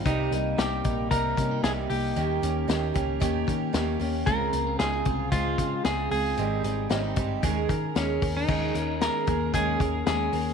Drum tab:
CC |--------|--------|--------|--------|
HH |xxxxxxxo|xxxxxxxo|xxxxxxxo|xxxxxxxo|
SD |--o---o-|--o---o-|--o---o-|--o---o-|
BD |o--ooo--|---ooo--|o--ooo--|---ooo-o|

CC |x-------|
HH |-xxxxxxo|
SD |--o---o-|
BD |o--ooo--|